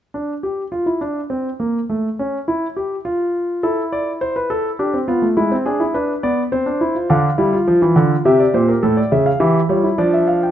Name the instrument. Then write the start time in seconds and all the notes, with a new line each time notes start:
grand piano
0.14 D4
0.43 G4
0.72 F4
0.86 E4
1.01 D4
1.30 C4
1.60 A#3
1.90 A3
2.19 C#4
2.48 E4
2.77 G4
3.05 F4
3.63 E4 A4
3.92 D5
4.21 C5
4.36 B4
4.50 A4
4.79 D4 G4
4.94 C4
5.08 B3 F4
5.22 A3
5.37 G#3 E4
5.51 C4
5.66 D4 G#4
5.80 E4
5.94 D4 B4
6.23 B3 D5
6.52 C4 C5
6.66 D4
6.81 E4
6.95 F4
7.10 D3 D4 F5
7.38 G3 E4
7.53 F4
7.68 F3
7.82 E3
7.96 D3
8.25 C3 G4 E5
8.40 D5
8.54 A#2 C5
8.68 A#4
8.83 A2 A4
8.97 D5
9.12 C#3 E5
9.26 F5
9.40 E3 G4 E5
9.69 G3 F4 C#5
9.84 E4
9.98 F3 D4 D5
10.14 E5
10.28 F5
10.43 G5